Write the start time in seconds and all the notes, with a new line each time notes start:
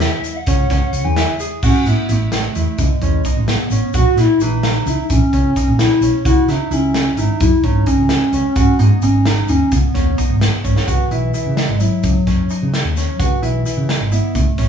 Already playing: E5
0.00 E4, snare, closed hi-hat, shaker
0.24 closed hi-hat, shaker
0.36 F#5
0.46 C#2 C#4, kick, closed hi-hat, shaker
0.70 C#2 C#4, kick, snare, closed hi-hat, shaker
0.93 C#2, closed hi-hat, shaker
1.04 E2 G#5
1.16 E4, snare, closed hi-hat
1.39 G#4, closed hi-hat, shaker
1.63 A1 C#4 F#4, kick, crash, shaker
1.86 A2 B3 E4, closed hi-hat
2.09 A1 A3 E4, closed hi-hat
2.32 snare, closed hi-hat
2.55 E2 E4, closed hi-hat, shaker
2.78 C#2 G#3, kick, closed hi-hat, shaker
3.02 E2 C#4, kick, closed hi-hat
3.25 D#4, kick, closed hi-hat, shaker
3.37 A1
3.48 B3, snare, closed hi-hat
3.70 A1 C#4, closed hi-hat, shaker
3.93 A#1 F#4, kick, closed hi-hat, shaker
4.16 A#2 E4, snare, closed hi-hat
4.20 E4
4.40 A#1 E3 D#4, closed hi-hat, shaker
4.63 snare, closed hi-hat
4.86 C#2 E4, closed hi-hat, shaker
5.10 A#1 C#4, kick, closed hi-hat, shaker
5.33 C#2 C#4, kick, closed hi-hat
5.56 D#4, kick, closed hi-hat, shaker
5.68 A#1
5.79 E4, snare, closed hi-hat
6.01 B1 C#4, closed hi-hat, shaker
6.25 C#2 E4 F#4, kick, closed hi-hat, shaker
6.48 C#3 D#4 E4, snare, closed hi-hat
6.71 C#2 C#4 E4, closed hi-hat, shaker
6.94 snare, closed hi-hat
7.17 G#1 D#4 E4, closed hi-hat, shaker
7.40 F#2 E4, kick, closed hi-hat, shaker
7.63 G#1 C#4 D#4, kick, closed hi-hat
7.86 C#4 D#4, kick, closed hi-hat, shaker
7.98 C#2
8.09 snare, closed hi-hat
8.32 C#2 C#4, closed hi-hat, shaker
8.56 G#1 C#4 F#4, kick, closed hi-hat, shaker
8.79 G#2 B3 D#4, closed hi-hat
9.02 G#1 C#4 D#4, closed hi-hat, shaker
9.26 D#4, snare, closed hi-hat
9.48 D#2 C#4 D#4, closed hi-hat, shaker
9.72 C#2 B3, kick, closed hi-hat, shaker
9.94 D#2 C#4, kick, snare, closed hi-hat
10.18 D#4, kick, closed hi-hat, shaker
10.30 G#1
10.41 snare, closed hi-hat
10.64 G#1 C#4, kick, shaker
10.76 snare
10.87 C#2 E3 F#4, kick, closed hi-hat, shaker
11.11 B1 E4, closed hi-hat
11.34 E4, closed hi-hat, shaker
11.46 C#3
11.56 G#3, snare, closed hi-hat
11.69 G#1
11.79 F#3 E4, closed hi-hat, shaker
12.02 C#2 F#3, kick, closed hi-hat, shaker
12.27 F#1 C#4, kick, snare, closed hi-hat
12.50 D#4, closed hi-hat, shaker
12.63 C#3
12.74 snare, closed hi-hat
12.84 D#2
12.97 C#4, snare, closed hi-hat, shaker
13.14 F#3
13.19 C#2 E3 F#4, kick, closed hi-hat, shaker
13.42 B1 E4, closed hi-hat
13.66 E4, closed hi-hat, shaker
13.77 C#3
13.89 G#3, snare, closed hi-hat
14.00 G#1
14.12 B3 E4, closed hi-hat, shaker
14.35 C#2 A3, kick, closed hi-hat, shaker
14.58 A1 C#4, kick, snare, closed hi-hat, shaker